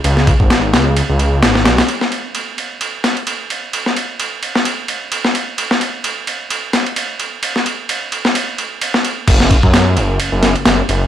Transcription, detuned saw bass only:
X:1
M:4/4
L:1/16
Q:"Swing 16ths" 1/4=130
K:C#phr
V:1 name="Detuned saw bass" clef=bass
C,,2 z G,,,3 C,,2 z C,,3 G,,,2 B,,, z | z16 | z16 | z16 |
z16 | F,,,2 z F,,3 F,,,2 F,,, F,,,2 F,,, F,,, z F,,, z |]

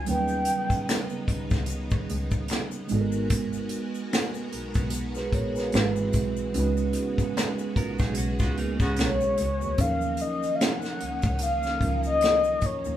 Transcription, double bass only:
X:1
M:4/4
L:1/16
Q:"Swing 16ths" 1/4=74
K:Ebm
V:1 name="Double bass" clef=bass
E,,2 z4 D,, D,,3 D,,2 z2 A,,,2- | A,,,2 z4 C,, C,,3 B,,,2 A,,,2 =B,,,2 | D,,2 z4 C,, C,, C,, D,, z D,, C,, z D,, E,, | E,,2 z4 D,, D,,3 D,,4 E,, E,, |]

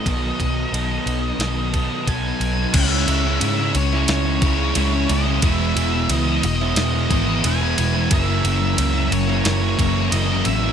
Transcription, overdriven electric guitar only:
X:1
M:4/4
L:1/16
Q:1/4=90
K:C#m
V:1 name="Overdriven electric guitar"
[B,,D,F,B,DA]4 [F,B,DA]4 [B,,D,F,B,DA]2 [F,B,DA]2 [F,B,DA]4 | [C,G,CE] [G,CE] [C,G,CE]2 [C,G,CE] [G,CE]2 [G,CE]2 [G,CE] [C,G,CE]2 [C,G,CE] [G,CE]2 [G,CE] | [E,G,B,E] [G,B,E] [E,G,B,E]2 [E,G,B,E] [G,B,E]2 [G,B,E]2 [G,B,E] [E,G,B,E]2 [E,G,B,E] [G,B,E]2 [G,B,E] | [F,,C,E,^A,E] [E,A,E] [C,E,A,E]2 [F,,C,E,A,E] [E,A,E]2 [E,A,E]2 [E,A,E] [C,E,A,E]2 [F,,C,E,A,E] [E,A,E]2 [E,A,E] |]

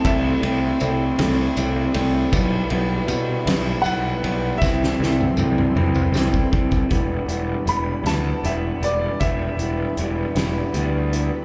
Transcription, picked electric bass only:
X:1
M:6/8
L:1/8
Q:3/8=52
K:Em
V:1 name="Picked electric bass" clef=bass
C,, C,, C,, C,, C,, C,, | B,,, B,,, B,, B,,, B,,, B,,, | C,, C,, C,, C,, C,, C,, | E,,, E,,, E,,, D,, E,,, E,,, |
E,,, E,,, E,,, E,,, D,,2 |]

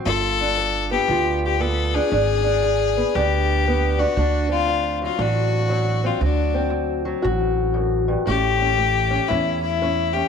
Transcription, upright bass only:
X:1
M:4/4
L:1/8
Q:"Swing" 1/4=117
K:Dmix
V:1 name="Upright bass" clef=bass
G,,,4 D,,4 | ^G,,,4 D,,4 | D,,4 A,,,4 | D,,4 A,,,4 |
A,,,4 E,,4 |]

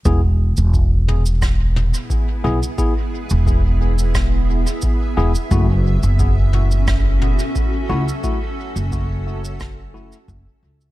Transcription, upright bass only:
X:1
M:4/4
L:1/16
Q:"Swing 16ths" 1/4=88
K:Emix
V:1 name="Upright bass" clef=bass
E,,,3 E,,,8 z3 B,,, z | z3 E,,,8 z3 E,,, z | F,,,3 F,,,8 z3 C,, z | z3 F,,,8 z F,,, z C,,2 |]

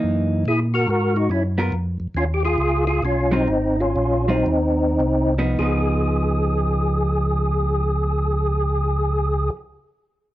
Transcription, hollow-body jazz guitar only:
X:1
M:4/4
L:1/8
Q:"Swing" 1/4=116
K:Dbmix
V:1 name="Hollow-body jazz guitar"
[_F,B,E]2 z4 z [C=FB] | z6 z [G,=CF] | z3 [G,=CF] z3 [F,_CE] | [F,CE]8- |
[F,CE]8 |]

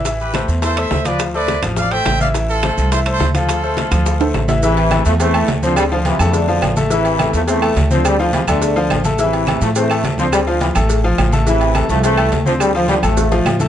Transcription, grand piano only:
X:1
M:4/4
L:1/8
Q:1/4=211
K:Am
V:1 name="Grand piano"
[E,Ee]2 [A,Ac]2 [E,Ee] [A,Ac]2 [F,Ff]- | [F,Ff] [A,Ac]2 [F,Ff]2 [A,Ac]2 [E,Ee] | [E,Ee]2 [A,Ac]2 [E,Ee] [A,Ac]2 [F,Ff]- | [F,Ff] [A,Ac]2 [F,Ff]2 [A,Ac]2 [E,Ee] |
[E,Ee]2 [A,Aa]2 [Ccc'] [A,Aa]2 [Ccc']- | [Ccc'] [F,Ff]2 [A,Aa]2 [F,Ff]2 [A,Aa] | [E,Ee]2 [A,Aa]2 [Ccc'] [A,Aa]2 [Ccc']- | [Ccc'] [F,Ff]2 [A,Aa]2 [F,Ff]2 [A,Aa] |
[E,Ee]2 [A,Aa]2 [Ccc'] [A,Aa]2 [Ccc']- | [Ccc'] [F,Ff]2 [A,Aa]2 [F,Ff]2 [A,Aa] | [E,Ee]2 [A,Aa]2 [Ccc'] [A,Aa]2 [Ccc']- | [Ccc'] [F,Ff]2 [A,Aa]2 [F,Ff]2 [A,Aa] |]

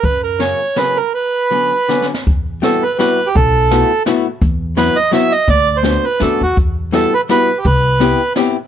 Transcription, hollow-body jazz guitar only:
X:1
M:3/4
L:1/8
Q:"Swing" 1/4=166
K:Bm
V:1 name="Hollow-body jazz guitar"
z2 [C,F,^A,C] z [C,F,A,C] z | z2 [D,F,B,C] z [D,F,B,C] z | [K:Em] z2 [G,B,EF] z [G,B,EF] z | z2 [A,B,EF] z [A,B,EF] z |
z2 [F,B,EF] z [F,B,EF] z | z2 [A,B,DF] z [A,B,DF] z | z2 [G,B,EF] z [G,B,EF] z | z2 [B,CEG] z [B,CEG] z |]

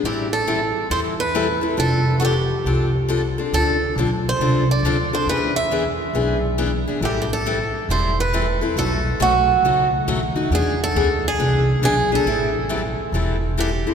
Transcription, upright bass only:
X:1
M:4/4
L:1/8
Q:"Swing" 1/4=137
K:Am
V:1 name="Upright bass" clef=bass
A,,,4 E,,4 | F,,,4 C,,4 | D,,2 B,,,2 C,,2 D,,2 | E,,4 B,,,4 |
A,,,4 E,,,4 | B,,,2 B,,,2 ^C,,2 ^D,,2 | E,,2 D,,2 C,,2 B,,,2 | A,,,4 E,,,4 |]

